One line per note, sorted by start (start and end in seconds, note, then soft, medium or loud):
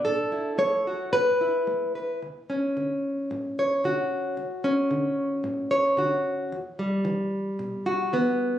0.05 0.54 A2 medium
0.05 0.86 A4 medium
0.32 1.10 E4 soft
0.58 1.08 A3 medium
0.58 1.12 C#5 medium
0.87 1.11 F#4 soft
1.13 1.62 A2 medium
1.13 1.94 B4 medium
1.41 2.20 E4 soft
1.67 2.17 A3 medium
1.95 2.19 B4 soft
2.22 2.71 D2 medium
2.50 4.35 C#4 soft
2.77 3.25 D3 soft
3.31 3.79 A2 soft
3.59 4.35 C#5 soft
3.84 4.32 D3 soft
3.84 5.98 F#4 soft
4.37 4.85 D2 medium
4.64 6.48 C#4 soft
4.91 5.39 D3 soft
5.44 5.92 A2 soft
5.71 6.48 C#5 soft
5.97 6.45 D3 soft
5.97 6.55 F#4 soft
6.52 7.00 E2 medium
6.79 8.59 G3 soft
7.05 7.53 E3 medium
7.59 8.07 B2 soft
7.86 8.59 F#4 soft
8.13 8.59 E3 soft
8.13 8.59 B3 soft